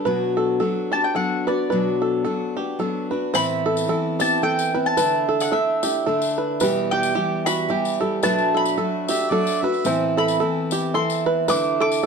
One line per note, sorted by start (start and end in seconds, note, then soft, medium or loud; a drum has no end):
0.05 0.61 B2 medium
0.05 0.59 F#3 medium
0.05 0.60 B3 medium
0.05 0.60 D4 medium
0.05 0.61 F#4 medium
0.05 0.36 B4 medium
0.37 0.59 A4 medium
0.60 0.92 F#3 medium
0.60 0.92 B3 soft
0.60 0.93 D4 soft
0.60 0.92 F#4 medium
0.60 0.91 A4 medium
0.92 1.15 B3 soft
0.92 1.15 D4 soft
0.92 1.15 F#4 soft
0.92 1.14 G4 medium
0.92 1.04 A5 medium
1.04 1.15 G5 medium
1.15 1.47 F#3 medium
1.15 1.47 B3 soft
1.15 1.48 D4 medium
1.15 1.47 F#4 medium
1.15 1.46 A4 medium
1.15 1.45 F#5 medium
1.47 1.71 B3 soft
1.47 1.71 D4 soft
1.47 1.71 F#4 soft
1.47 1.69 B4 medium
1.47 2.76 D5 medium
1.70 2.25 B2 medium
1.70 2.24 F#3 medium
1.70 2.24 B3 medium
1.70 2.25 D4 medium
1.70 2.26 F#4 medium
1.70 2.01 B4 medium
2.02 2.23 A4 medium
2.24 2.57 F#3 soft
2.24 2.57 B3 soft
2.24 2.56 D4 medium
2.24 2.56 F#4 medium
2.24 2.56 A4 medium
2.57 2.78 B3 soft
2.57 2.79 D4 soft
2.57 2.80 F#4 soft
2.57 2.79 G4 medium
2.79 3.11 F#3 medium
2.79 3.11 B3 medium
2.79 3.11 D4 medium
2.79 3.10 F#4 medium
2.79 3.10 A4 medium
3.11 3.33 B3 soft
3.11 3.34 D4 soft
3.11 3.34 F#4 soft
3.11 3.33 B4 medium
3.34 3.88 A2 medium
3.34 3.87 E3 medium
3.34 3.87 B3 medium
3.34 3.87 C4 medium
3.34 3.89 E4 medium
3.34 3.65 C5 medium
3.34 4.21 B5 loud
3.34 tambourine medium
3.66 3.88 A4 medium
3.77 tambourine medium
3.87 4.20 E3 medium
3.87 4.19 B3 medium
3.87 4.20 C4 medium
3.87 4.18 E4 medium
3.87 4.20 A4 medium
4.19 4.42 B3 soft
4.19 4.42 C4 soft
4.19 4.42 E4 soft
4.19 4.42 G4 medium
4.19 4.43 A5 medium
4.19 tambourine medium
4.42 4.74 E3 medium
4.42 4.74 B3 medium
4.42 4.75 C4 medium
4.42 4.73 E4 medium
4.42 4.74 A4 medium
4.42 4.86 G5 medium
4.59 tambourine medium
4.74 4.98 B3 soft
4.74 4.98 C4 soft
4.74 4.97 E4 soft
4.74 4.96 B4 medium
4.86 5.41 A5 medium
4.97 5.50 D3 medium
4.97 5.51 A3 medium
4.97 5.52 D4 medium
4.97 5.53 E4 medium
4.97 5.28 B4 medium
4.97 tambourine medium
5.29 5.51 A4 medium
5.40 5.53 F#5 medium
5.40 tambourine medium
5.52 5.83 D3 medium
5.52 5.84 A3 medium
5.52 5.84 D4 medium
5.52 5.83 E4 medium
5.52 5.83 A4 medium
5.52 6.34 E5 medium
5.83 6.07 A3 soft
5.83 6.07 D4 soft
5.83 6.06 E4 medium
5.83 6.06 G4 medium
5.83 tambourine loud
6.06 6.61 D3 medium
6.06 6.61 A3 medium
6.06 6.62 D4 medium
6.06 6.62 E4 medium
6.06 6.37 A4 medium
6.22 tambourine medium
6.38 6.60 B4 medium
6.60 7.15 E2 medium
6.60 7.16 B2 medium
6.60 7.13 E3 medium
6.60 7.14 G3 medium
6.60 7.15 B3 medium
6.60 7.15 G4 medium
6.60 6.92 B4 medium
6.60 tambourine loud
6.91 7.14 G4 medium
6.91 7.46 G5 loud
7.03 tambourine medium
7.14 7.67 E3 medium
7.14 7.68 G3 medium
7.14 7.70 B3 medium
7.14 7.46 G4 medium
7.14 7.69 G4 medium
7.46 7.69 F#4 medium
7.46 8.19 B5 loud
7.46 tambourine loud
7.68 8.01 E3 medium
7.68 8.01 G3 medium
7.68 8.00 B3 medium
7.68 8.01 G4 medium
7.68 7.99 G4 medium
7.85 tambourine medium
8.00 8.23 E3 soft
8.00 8.24 G3 soft
8.00 8.24 B3 medium
8.00 8.23 G4 soft
8.00 8.23 A4 medium
8.23 8.78 B2 medium
8.23 8.76 F#3 medium
8.23 8.78 A3 medium
8.23 8.77 D4 medium
8.23 8.78 F#4 medium
8.23 8.54 B4 medium
8.23 8.56 A5 medium
8.23 tambourine medium
8.38 tambourine soft
8.54 8.76 A4 medium
8.54 9.29 B5 medium
8.65 tambourine medium
8.77 9.09 F#3 medium
8.77 9.10 A3 medium
8.77 9.09 D4 medium
8.77 9.08 F#4 medium
8.77 9.09 A4 medium
9.08 9.30 A3 soft
9.08 9.30 D4 soft
9.08 9.31 F#4 soft
9.08 9.31 G4 medium
9.08 9.32 E5 loud
9.08 tambourine medium
9.31 9.63 F#3 medium
9.31 9.63 A3 medium
9.31 9.63 D4 medium
9.31 9.61 F#4 medium
9.31 9.63 A4 medium
9.31 9.64 D5 medium
9.47 tambourine medium
9.62 9.85 A3 soft
9.62 9.85 D4 medium
9.62 9.85 F#4 medium
9.62 9.86 B4 medium
9.62 10.02 E5 medium
9.74 tambourine soft
9.84 10.40 A2 medium
9.84 10.41 E3 medium
9.84 10.40 B3 medium
9.84 10.40 C4 medium
9.84 10.42 E4 medium
9.84 10.17 C5 medium
9.84 tambourine medium
10.17 10.39 A4 medium
10.17 10.94 B5 medium
10.28 tambourine medium
10.40 10.95 E3 medium
10.40 10.96 B3 medium
10.40 10.95 C4 medium
10.40 10.97 E4 medium
10.40 10.71 A4 medium
10.71 10.95 G4 medium
10.71 tambourine medium
10.94 11.49 E3 medium
10.94 11.50 B3 medium
10.94 11.49 C4 medium
10.94 11.50 E4 medium
10.94 11.26 A4 medium
10.94 11.45 C6 medium
11.10 tambourine medium
11.26 11.47 B4 medium
11.48 12.03 D3 medium
11.48 12.04 A3 medium
11.48 12.04 D4 medium
11.48 12.05 E4 medium
11.48 11.80 B4 medium
11.48 11.80 D6 loud
11.48 tambourine medium
11.80 12.02 A4 medium
11.80 12.06 D6 loud
11.92 tambourine medium